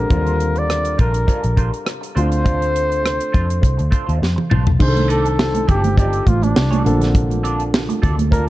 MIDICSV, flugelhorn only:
0, 0, Header, 1, 2, 480
1, 0, Start_track
1, 0, Tempo, 586510
1, 88, Time_signature, 4, 2, 24, 8
1, 6948, End_track
2, 0, Start_track
2, 0, Title_t, "Flugelhorn"
2, 0, Program_c, 0, 56
2, 0, Note_on_c, 0, 70, 98
2, 477, Note_on_c, 0, 74, 95
2, 489, Note_off_c, 0, 70, 0
2, 818, Note_off_c, 0, 74, 0
2, 824, Note_on_c, 0, 70, 80
2, 1505, Note_off_c, 0, 70, 0
2, 1777, Note_on_c, 0, 72, 124
2, 3422, Note_off_c, 0, 72, 0
2, 3938, Note_on_c, 0, 72, 99
2, 4179, Note_on_c, 0, 69, 85
2, 4192, Note_off_c, 0, 72, 0
2, 4655, Note_off_c, 0, 69, 0
2, 4660, Note_on_c, 0, 67, 91
2, 4879, Note_off_c, 0, 67, 0
2, 4898, Note_on_c, 0, 67, 88
2, 5140, Note_on_c, 0, 65, 82
2, 5152, Note_off_c, 0, 67, 0
2, 5266, Note_on_c, 0, 62, 86
2, 5278, Note_off_c, 0, 65, 0
2, 5983, Note_off_c, 0, 62, 0
2, 6809, Note_on_c, 0, 70, 94
2, 6917, Note_off_c, 0, 70, 0
2, 6948, End_track
0, 0, End_of_file